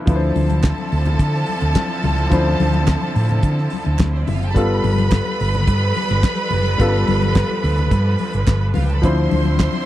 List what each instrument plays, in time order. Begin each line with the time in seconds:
0.06 fingered electric bass D2, string section D3 F3 C4 E4, grand piano F3 D4 E4 B4, violin section A4 A5, kick, closed hi-hat, muted conga
0.16 grand piano C5
0.36 fingered electric bass D2, open hi-hat, high conga
0.50 closed hi-hat, high conga
0.63 kick, snare, clap, closed hi-hat, muted conga
0.78 high conga
0.92 fingered electric bass D2, open hi-hat, muted conga
1.06 closed hi-hat, low conga
1.19 fingered electric bass D3, kick, closed hi-hat
1.34 snare
1.46 open hi-hat, high conga
1.61 fingered electric bass D2, closed hi-hat
1.75 kick, snare, clap, closed hi-hat, muted conga, high conga
2.03 fingered electric bass C#2, open hi-hat, high conga, low conga
2.18 closed hi-hat
2.30 fingered electric bass D2, grand piano F3 D4 E4 C5, kick, closed hi-hat
2.60 fingered electric bass D2, open hi-hat, muted conga, high conga
2.74 closed hi-hat, high conga
2.87 kick, snare, clap, closed hi-hat
3.02 high conga
3.16 fingered electric bass A2, open hi-hat
3.29 closed hi-hat, low conga
3.43 fingered electric bass D3, kick, closed hi-hat, muted conga
3.58 snare
3.70 open hi-hat, muted conga, high conga
3.85 fingered electric bass D2, closed hi-hat
3.99 fingered electric bass D2, kick, snare, clap, closed hi-hat, high conga
4.00 clap
4.13 violin section C4 C5
4.20 violin section D4 D5
4.27 fingered electric bass F#1, violin section E4 E5, open hi-hat, high conga, low conga
4.33 violin section F4 F5
4.42 violin section G4 G5, closed hi-hat
4.47 violin section A4 A5
4.54 fingered electric bass G1, string section F3 G3 A4 B4, grand piano G3 B3 F4 A4, violin section B4 B5, kick, closed hi-hat
4.84 fingered electric bass G1, open hi-hat, muted conga, high conga
4.98 closed hi-hat, high conga
5.11 kick, snare, clap, closed hi-hat, muted conga
5.25 high conga
5.40 fingered electric bass G1, open hi-hat
5.54 closed hi-hat, low conga
5.67 fingered electric bass G2, kick, closed hi-hat, muted conga
5.95 open hi-hat, muted conga, high conga
6.09 fingered electric bass G1, closed hi-hat
6.23 kick, snare, clap, closed hi-hat, high conga
6.51 fingered electric bass F#1, open hi-hat, high conga, low conga
6.66 closed hi-hat
6.78 fingered electric bass G1, grand piano G3 B3 F4 A4, kick, closed hi-hat, muted conga
7.07 fingered electric bass G1, open hi-hat, high conga
7.22 closed hi-hat, high conga
7.35 kick, snare, clap, closed hi-hat, muted conga
7.50 high conga
7.64 fingered electric bass D2, open hi-hat
7.78 closed hi-hat, low conga
7.91 fingered electric bass G2, kick, closed hi-hat, muted conga
8.18 open hi-hat, muted conga, high conga
8.33 fingered electric bass G1, closed hi-hat
8.46 fingered electric bass G1, kick, snare, clap, closed hi-hat, muted conga, high conga
8.74 fingered electric bass C#2, violin section F4 F5, open hi-hat, high conga, low conga
8.83 violin section G4 G5
8.90 violin section A4 A5, closed hi-hat
8.97 violin section B4 B5
9.02 fingered electric bass D2, string section D3 C4 E4, grand piano F3 D4 E4 C5, violin section C5 C6, kick, closed hi-hat
9.31 fingered electric bass D2, open hi-hat, muted conga, high conga
9.45 closed hi-hat, high conga
9.60 kick, snare, clap, closed hi-hat
9.73 high conga